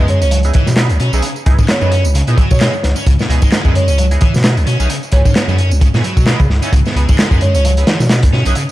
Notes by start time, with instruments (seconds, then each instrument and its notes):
Already playing: distorted electric guitar G#3
0.00 sub bass F#2
0.08 marimba C#5, closed hi-hat
0.21 sub bass C#2, distorted electric guitar C#4, marimba C#5, closed hi-hat, tambourine
0.31 distorted electric guitar F#3, closed hi-hat, tambourine
0.43 synth stab B3 D#4 E4 G#4, closed hi-hat, tambourine
0.53 distorted electric guitar E3, kick, closed hi-hat
0.66 sub bass B2, snare, tambourine
0.76 synth stab B3 D#4 E4 B4, snare, clap, closed hi-hat, tambourine
0.89 sub bass C#2, closed hi-hat, tambourine
1.00 sub bass B2, distorted electric guitar C#4, closed hi-hat
1.13 sub bass B1, synth stab B3 D#4 E4 G#4, distorted electric guitar C#4, tambourine
1.22 distorted electric guitar C#3, closed hi-hat, tambourine
1.36 tambourine
1.46 sub bass C#2, synth stab B3 D#4 E4 G#4, kick, closed hi-hat
1.59 sub bass G#2, distorted electric guitar C#3, kick, tambourine
1.69 distorted electric guitar B2, marimba C#5, snare, clap, closed hi-hat, tambourine
1.81 sub bass F#2, distorted electric guitar F#3, synth stab B3 D#4 E4 G#4, marimba C#5, tambourine
1.92 distorted electric guitar C#4, closed hi-hat
2.04 sub bass C#2, tambourine
2.15 distorted electric guitar C#3, closed hi-hat, tambourine
2.27 sub bass A#2, distorted electric guitar B2, synth stab B3 D#4 E4 G#4, closed hi-hat, tambourine
2.37 distorted electric guitar F#3, kick, closed hi-hat
2.51 sub bass B2, marimba C#5, kick, tambourine
2.60 distorted electric guitar G#3, synth stab B3 D#4 E4 G#4, marimba C#5, snare, clap, closed hi-hat, tambourine
2.73 tambourine
2.83 sub bass C#2, snare, closed hi-hat
2.96 distorted electric guitar C#4, tambourine
3.06 sub bass C#2, distorted electric guitar C#3, kick, closed hi-hat, tambourine
3.19 distorted electric guitar B2, snare, tambourine
3.29 sub bass C#2, synth stab B3 D#4 E4 G#4, closed hi-hat
3.42 sub bass G#2, distorted electric guitar G#3, kick, tambourine
3.52 snare, clap, closed hi-hat, tambourine
3.65 sub bass F#2, synth stab B3 D#4 E4 G#4, kick, tambourine
3.75 marimba C#5, closed hi-hat
3.88 sub bass C#2, distorted electric guitar C#4, marimba C#5, closed hi-hat, tambourine
3.98 distorted electric guitar F#3, closed hi-hat, tambourine
4.11 synth stab B3 D#4 E4 G#4, closed hi-hat, tambourine
4.21 distorted electric guitar E3, kick, closed hi-hat
4.34 sub bass B2, snare, tambourine
4.44 synth stab B3 D#4 E4 B4, snare, clap, closed hi-hat, tambourine
4.57 sub bass C#2, closed hi-hat, tambourine
4.67 sub bass B2, distorted electric guitar C#4, closed hi-hat
4.79 sub bass B1, synth stab B3 D#4 E4 G#4, distorted electric guitar C#4, tambourine
4.90 distorted electric guitar C#3, closed hi-hat, tambourine
5.03 tambourine
5.12 sub bass C#2, synth stab B3 D#4 E4 G#4, marimba C#5, kick, closed hi-hat
5.25 sub bass G#2, distorted electric guitar C#3, kick, tambourine
5.35 distorted electric guitar B2, snare, clap, closed hi-hat, tambourine
5.48 sub bass F#2, distorted electric guitar F#3, synth stab B3 D#4 E4 G#4, tambourine
5.58 distorted electric guitar C#4, closed hi-hat
5.71 sub bass C#2, tambourine
5.81 distorted electric guitar C#3, kick, closed hi-hat, tambourine
5.94 sub bass A#2, distorted electric guitar B2, synth stab B3 D#4 E4 G#4, snare, tambourine
6.03 distorted electric guitar F#3, closed hi-hat
6.17 sub bass B2, kick, tambourine
6.26 distorted electric guitar G#3, synth stab B3 D#4 E4 B4, snare, clap, closed hi-hat, tambourine
6.40 sub bass C#3, kick, tambourine
6.50 sub bass C#2, snare
6.62 synth stab B3 D#4 E4 G#4, distorted electric guitar C#4, closed hi-hat, tambourine
6.72 sub bass C#2, distorted electric guitar C#3, kick, closed hi-hat, tambourine
6.85 distorted electric guitar B2, snare, tambourine
6.95 sub bass C#2, synth stab B3 D#4 E4 G#4, closed hi-hat
7.08 sub bass G#2, distorted electric guitar G#3, kick, tambourine
7.19 snare, clap, closed hi-hat, tambourine
7.31 sub bass F#2, synth stab B3 D#4 E4 G#4, kick, tambourine
7.41 marimba C#5, closed hi-hat
7.54 sub bass C#2, distorted electric guitar C#4, marimba C#5, closed hi-hat, tambourine
7.65 distorted electric guitar F#3, closed hi-hat, tambourine
7.77 synth stab B3 D#4 E4 G#4, closed hi-hat, tambourine
7.87 distorted electric guitar E3, snare, closed hi-hat
8.00 sub bass B2, snare, tambourine
8.09 synth stab B3 D#4 E4 B4, snare, clap, closed hi-hat, tambourine
8.23 sub bass C#2, kick, closed hi-hat, tambourine
8.33 sub bass B2, distorted electric guitar C#4, snare
8.45 sub bass B1, synth stab B3 D#4 E4 G#4, distorted electric guitar C#4, closed hi-hat, tambourine
8.55 distorted electric guitar C#3, closed hi-hat, tambourine